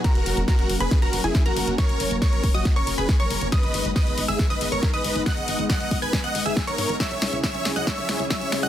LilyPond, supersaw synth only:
\new Staff \with { instrumentName = "Supersaw synth" } { \time 4/4 \key fis \mixolydian \tempo 4 = 138 <fis' ais'>8. r16 <fis' ais'>8. <gis' b'>8 <fis' ais'>8 <e' gis'>8 <fis' ais'>8. | <ais' cis''>8. r16 <ais' cis''>8. <fis' dis''>8 <ais' cis''>8 <gis' b'>8 <ais' cis''>8. | <b' dis''>8. r16 <b' dis''>8. <gis' e''>8 <b' dis''>8 <ais' cis''>8 <b' dis''>8. | <dis'' fis''>8. r16 <dis'' fis''>8. <b' gis''>8 <dis'' fis''>8 <gis' e''>8 <ais' cis''>8. |
<cis'' e''>8. r16 <cis'' e''>8. <dis'' fis''>16 <cis'' e''>8. r16 <cis'' e''>8. <dis'' fis''>16 | }